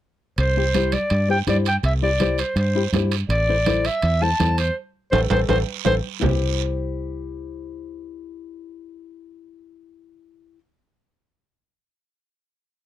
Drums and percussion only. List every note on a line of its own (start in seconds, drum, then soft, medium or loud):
0.38 high timbale medium
0.38 long guiro medium
0.74 high conga medium
0.74 high timbale medium
0.74 short guiro medium
0.92 high conga medium
0.92 high timbale medium
0.92 short guiro medium
1.10 high timbale medium
1.10 long guiro medium
1.47 high conga medium
1.47 high timbale medium
1.47 short guiro medium
1.65 high timbale medium
1.65 short guiro medium
1.83 high timbale medium
1.83 long guiro medium
2.20 high conga medium
2.20 high timbale medium
2.20 short guiro medium
2.38 high timbale medium
2.38 short guiro medium
2.56 high timbale medium
2.56 long guiro medium
2.93 high conga medium
2.93 high timbale medium
2.93 low timbale medium
2.93 short guiro medium
3.11 high timbale medium
3.11 short guiro medium
3.30 high timbale medium
3.30 long guiro medium
3.66 high conga medium
3.66 high timbale medium
3.66 short guiro medium
3.85 high timbale medium
3.85 short guiro medium
4.02 high timbale medium
4.02 long guiro medium
4.40 high conga medium
4.40 high timbale medium
4.40 short guiro medium
4.58 high timbale medium
4.58 short guiro medium
5.13 high conga medium
5.13 high timbale medium
5.13 long guiro medium
5.30 high conga medium
5.30 high timbale medium
5.30 long guiro medium
5.49 high conga medium
5.49 high timbale medium
5.49 long guiro loud
5.85 high conga medium
5.85 high timbale medium
5.85 long guiro medium
6.21 low conga loud
6.21 low timbale loud